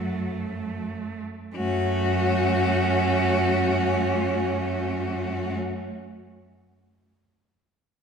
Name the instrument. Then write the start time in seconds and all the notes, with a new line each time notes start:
cello
Already playing: F#2 F#3 A3 F#4
1.55 F#2 A3 C#4 F#4